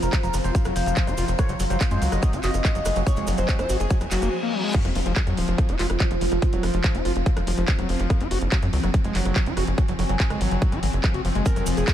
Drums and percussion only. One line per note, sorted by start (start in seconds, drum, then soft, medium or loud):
0.02 closed hi-hat soft
0.02 cabasa soft
0.13 kick loud
0.13 clap loud
0.13 closed hi-hat medium
0.13 cabasa soft
0.23 closed hi-hat soft
0.23 cabasa soft
0.34 cross-stick soft
0.34 open hi-hat medium
0.34 cabasa medium
0.44 closed hi-hat soft
0.44 cabasa soft
0.55 kick loud
0.55 closed hi-hat medium
0.55 cabasa medium
0.65 cross-stick medium
0.65 closed hi-hat soft
0.65 cabasa soft
0.76 open hi-hat loud
0.76 cabasa medium
0.86 closed hi-hat soft
0.86 cabasa soft
0.96 kick loud
0.96 clap loud
0.96 closed hi-hat medium
0.96 cabasa medium
1.07 cross-stick soft
1.07 closed hi-hat soft
1.07 cabasa soft
1.17 open hi-hat medium
1.17 cabasa medium
1.28 closed hi-hat soft
1.28 cabasa soft
1.39 kick loud
1.39 cross-stick medium
1.39 closed hi-hat medium
1.39 cabasa soft
1.49 closed hi-hat soft
1.49 cabasa soft
1.60 open hi-hat loud
1.60 cabasa medium
1.70 closed hi-hat soft
1.70 cabasa soft
1.80 kick loud
1.80 cross-stick soft
1.80 clap loud
1.80 closed hi-hat medium
1.80 cabasa medium
1.91 closed hi-hat soft
1.91 cabasa soft
2.02 open hi-hat medium
2.02 cabasa medium
2.12 cross-stick medium
2.12 closed hi-hat soft
2.12 cabasa soft
2.22 kick loud
2.22 closed hi-hat medium
2.22 cabasa medium
2.33 closed hi-hat soft
2.33 cabasa soft
2.43 clap medium
2.43 open hi-hat loud
2.43 cabasa medium
2.54 cross-stick soft
2.54 closed hi-hat soft
2.54 cabasa soft
2.65 kick loud
2.65 clap loud
2.65 closed hi-hat medium
2.65 cabasa soft
2.75 closed hi-hat soft
2.75 cabasa soft
2.85 cross-stick medium
2.85 open hi-hat medium
2.85 cabasa medium
2.96 closed hi-hat soft
2.96 cabasa soft
3.07 kick loud
3.07 closed hi-hat medium
3.07 cabasa medium
3.16 closed hi-hat soft
3.16 cabasa soft
3.27 cross-stick soft
3.27 open hi-hat loud
3.27 cabasa loud
3.38 closed hi-hat soft
3.38 cabasa soft
3.48 kick loud
3.48 clap loud
3.48 closed hi-hat medium
3.48 cabasa medium
3.59 cross-stick medium
3.59 closed hi-hat soft
3.59 cabasa soft
3.69 open hi-hat medium
3.69 cabasa medium
3.80 closed hi-hat soft
3.80 cabasa soft
3.90 kick loud
3.90 closed hi-hat medium
3.90 cabasa soft
4.01 cross-stick soft
4.01 closed hi-hat soft
4.01 cabasa soft
4.11 clap medium
4.11 open hi-hat loud
4.11 cabasa medium
4.22 closed hi-hat soft
4.22 cabasa soft
4.74 kick loud
4.74 closed hi-hat medium
4.74 crash loud
4.85 cross-stick soft
4.85 closed hi-hat soft
4.95 open hi-hat loud
5.06 closed hi-hat soft
5.16 kick loud
5.16 cross-stick medium
5.16 clap loud
5.16 closed hi-hat medium
5.27 closed hi-hat soft
5.37 open hi-hat medium
5.48 closed hi-hat soft
5.58 kick loud
5.58 cross-stick soft
5.58 closed hi-hat medium
5.69 closed hi-hat soft
5.79 clap medium
5.79 open hi-hat loud
5.90 cross-stick medium
5.90 closed hi-hat soft
6.00 kick loud
6.00 clap loud
6.00 closed hi-hat medium
6.11 closed hi-hat soft
6.21 open hi-hat medium
6.32 cross-stick soft
6.32 closed hi-hat soft
6.42 kick loud
6.42 closed hi-hat medium
6.53 closed hi-hat soft
6.63 cross-stick medium
6.63 open hi-hat loud
6.74 closed hi-hat soft
6.84 kick loud
6.84 clap loud
6.84 closed hi-hat medium
6.95 closed hi-hat soft
7.05 cross-stick soft
7.05 open hi-hat medium
7.16 closed hi-hat soft
7.26 kick loud
7.26 closed hi-hat medium
7.37 cross-stick medium
7.37 closed hi-hat soft
7.47 open hi-hat loud
7.58 closed hi-hat soft
7.68 kick loud
7.68 clap loud
7.68 closed hi-hat medium
7.79 cross-stick soft
7.79 closed hi-hat soft
7.89 open hi-hat loud
8.00 closed hi-hat soft
8.10 kick loud
8.10 cross-stick medium
8.10 closed hi-hat medium
8.21 closed hi-hat soft
8.31 open hi-hat loud
8.41 closed hi-hat soft
8.52 kick loud
8.52 cross-stick soft
8.52 clap loud
8.52 closed hi-hat medium
8.62 closed hi-hat soft
8.73 open hi-hat loud
8.83 cross-stick medium
8.83 closed hi-hat soft
8.94 kick loud
8.94 closed hi-hat medium
9.04 closed hi-hat soft
9.15 clap medium
9.15 open hi-hat loud
9.25 cross-stick soft
9.25 closed hi-hat soft
9.36 kick loud
9.36 clap loud
9.36 closed hi-hat medium
9.46 closed hi-hat soft
9.57 cross-stick medium
9.57 open hi-hat loud
9.67 closed hi-hat soft
9.78 kick loud
9.78 closed hi-hat medium
9.88 closed hi-hat soft
9.99 cross-stick soft
9.99 open hi-hat loud
10.09 closed hi-hat soft
10.20 kick loud
10.20 clap loud
10.20 closed hi-hat medium
10.30 cross-stick medium
10.30 closed hi-hat soft
10.41 open hi-hat loud
10.51 closed hi-hat soft
10.62 kick loud
10.62 closed hi-hat medium
10.72 cross-stick soft
10.72 closed hi-hat soft
10.83 open hi-hat loud
10.93 closed hi-hat soft
11.04 kick loud
11.04 cross-stick medium
11.04 clap loud
11.04 closed hi-hat medium
11.14 closed hi-hat soft
11.25 open hi-hat loud
11.35 closed hi-hat soft
11.46 kick loud
11.46 closed hi-hat medium
11.46 cabasa medium
11.56 cross-stick soft
11.56 closed hi-hat soft
11.56 cabasa soft
11.66 open hi-hat loud
11.66 cabasa loud
11.77 closed hi-hat soft
11.77 cabasa soft
11.88 kick loud
11.88 cross-stick medium
11.88 clap loud
11.88 closed hi-hat medium
11.88 cabasa soft